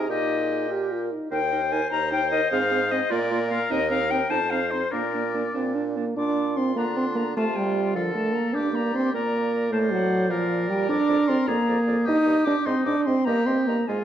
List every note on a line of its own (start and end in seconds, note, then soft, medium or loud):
0.00 0.11 G#4 medium
0.09 1.10 A#2 medium
0.09 0.70 D#4 medium
0.09 0.39 G4 medium
0.09 1.01 G4 medium
0.09 0.70 D#5 loud
0.39 0.71 G#4 medium
0.70 0.93 G4 medium
0.70 1.12 A#4 medium
0.91 1.13 F4 medium
1.12 1.32 D#4 medium
1.31 1.86 D#2 medium
1.31 1.41 D#4 medium
1.31 1.40 A#4 medium
1.31 3.12 C5 loud
1.31 1.73 G5 loud
1.52 1.61 D#4 medium
1.52 1.61 A#4 medium
1.72 1.81 D#4 medium
1.72 1.81 A#4 medium
1.72 1.91 G#5 loud
1.91 2.45 D#2 loud
1.91 2.01 D#4 medium
1.91 2.02 A#4 medium
1.91 2.11 A#5 loud
2.12 2.21 D#4 medium
2.12 2.22 A#4 medium
2.12 2.30 G5 loud
2.31 2.41 D#4 medium
2.31 2.41 A#4 medium
2.31 2.51 D#5 loud
2.51 3.04 G#2 loud
2.51 2.61 C4 medium
2.51 2.61 G#4 medium
2.51 2.93 F5 loud
2.71 2.80 C4 medium
2.71 2.80 G#4 medium
2.91 3.01 C4 medium
2.91 3.00 G#4 medium
2.91 3.12 D#5 loud
3.10 3.64 A#2 loud
3.10 3.20 A#3 medium
3.10 3.20 F4 medium
3.10 4.29 A#4 medium
3.10 3.49 D5 loud
3.31 3.40 A#3 medium
3.31 3.40 F4 medium
3.50 3.59 A#3 medium
3.50 3.60 F4 medium
3.50 3.73 F5 loud
3.70 4.24 D#2 loud
3.70 3.79 C4 medium
3.70 3.79 D#4 medium
3.70 3.90 D#5 loud
3.90 3.99 C4 medium
3.90 4.00 D#4 medium
3.90 4.12 F5 loud
4.10 4.20 C4 medium
4.10 4.19 D#4 medium
4.10 4.32 G5 loud
4.29 4.86 F2 loud
4.29 4.40 C4 medium
4.29 4.39 D#4 medium
4.29 4.93 C5 loud
4.29 4.51 A5 loud
4.50 4.61 C4 medium
4.50 4.60 D#4 medium
4.50 4.72 F5 loud
4.71 4.82 C4 medium
4.71 4.81 D#4 medium
4.71 4.92 C5 loud
4.91 5.48 A#2 loud
4.91 5.02 A#3 medium
4.91 5.02 D4 medium
4.91 5.54 A#4 loud
4.91 5.86 D5 medium
5.13 5.23 A#3 medium
5.13 5.23 D4 medium
5.34 5.44 A#3 medium
5.34 5.44 D4 medium
5.54 6.10 A#2 medium
5.54 5.76 C4 medium
5.54 5.64 D4 medium
5.75 5.84 D4 medium
5.75 5.98 D4 medium
5.96 6.16 A#3 medium
5.96 6.05 D4 medium
6.17 6.78 A#2 medium
6.17 6.59 D4 loud
6.17 6.73 F4 medium
6.17 6.58 D6 medium
6.57 6.75 C4 loud
6.57 6.79 C6 medium
6.76 7.36 D3 medium
6.76 6.85 A#3 medium
6.76 7.33 D4 medium
6.76 7.35 F4 medium
6.76 6.98 A#5 medium
6.96 7.06 C4 medium
6.96 7.17 C6 medium
7.15 7.24 A#3 medium
7.15 7.36 A#5 medium
7.36 7.96 C3 medium
7.36 7.45 A3 loud
7.36 7.97 F4 medium
7.36 7.95 F4 medium
7.36 7.57 A5 medium
7.55 7.97 G3 loud
7.55 7.94 G5 medium
7.95 8.39 D3 medium
7.95 8.14 F3 medium
7.95 8.56 A4 medium
7.95 8.57 A#4 medium
7.95 8.01 F5 medium
8.14 8.34 A3 medium
8.14 8.36 A5 medium
8.33 8.55 A#3 loud
8.33 8.54 A#5 medium
8.53 9.13 G2 medium
8.53 8.72 D4 loud
8.53 9.13 G4 medium
8.53 9.14 D5 medium
8.53 8.77 D6 medium
8.73 8.93 A#3 medium
8.73 8.96 A#5 medium
8.94 9.13 C4 loud
8.94 9.13 C6 medium
9.14 9.71 A#2 medium
9.14 9.72 A#3 medium
9.14 9.71 A#4 medium
9.14 9.71 D5 medium
9.14 9.71 A#5 medium
9.71 10.31 A2 medium
9.71 9.93 A3 loud
9.71 10.32 C5 medium
9.71 10.29 D5 medium
9.71 9.78 A5 medium
9.92 10.32 F#3 loud
9.92 10.29 F#5 medium
10.29 10.88 A#2 medium
10.29 10.71 F3 loud
10.29 11.50 A#4 medium
10.29 10.88 D5 medium
10.29 10.68 F5 medium
10.69 10.88 G3 loud
10.69 10.91 G5 medium
10.89 10.98 F2 medium
10.89 11.31 D4 loud
10.89 10.99 D5 medium
10.89 11.29 D6 loud
11.09 11.18 F2 medium
11.09 11.18 D5 medium
11.28 11.38 F2 medium
11.28 11.49 C4 loud
11.28 11.37 D5 medium
11.28 11.48 C6 medium
11.47 11.56 F2 medium
11.47 12.07 A#3 loud
11.47 12.07 G#4 medium
11.47 11.58 D5 medium
11.47 11.79 A#5 loud
11.68 11.77 F2 medium
11.68 11.78 D5 medium
11.87 11.97 F2 medium
11.87 11.96 D5 medium
12.05 12.16 G2 medium
12.05 12.46 D#4 loud
12.05 12.68 G4 medium
12.05 12.16 D#5 medium
12.05 12.46 D#6 loud
12.26 12.35 G2 medium
12.26 12.36 D#5 medium
12.45 12.55 G2 medium
12.45 12.56 D4 loud
12.45 12.56 D#5 medium
12.45 12.67 D6 loud
12.65 12.75 G#2 medium
12.65 12.86 C4 loud
12.65 13.06 D#4 medium
12.65 12.75 D#5 medium
12.65 12.84 C6 loud
12.85 12.95 G#2 medium
12.85 13.08 D4 loud
12.85 12.96 D#5 medium
12.85 13.04 D6 loud
13.04 13.16 G#2 medium
13.04 13.28 C4 loud
13.04 13.16 D#5 medium
13.04 13.26 C6 loud
13.24 13.36 G2 medium
13.24 13.48 A#3 loud
13.24 13.84 G4 medium
13.24 13.36 D#5 medium
13.24 13.47 A#5 loud
13.46 13.56 G2 medium
13.46 13.69 C4 loud
13.46 13.57 D#5 medium
13.46 13.66 C6 medium
13.67 13.77 G2 medium
13.67 13.88 A#3 loud
13.67 13.77 D#5 medium
13.67 13.89 A#5 medium
13.87 13.98 G#2 medium
13.87 14.04 G#3 medium
13.87 14.04 F4 medium
13.87 13.98 D#5 medium
13.87 14.04 G#5 medium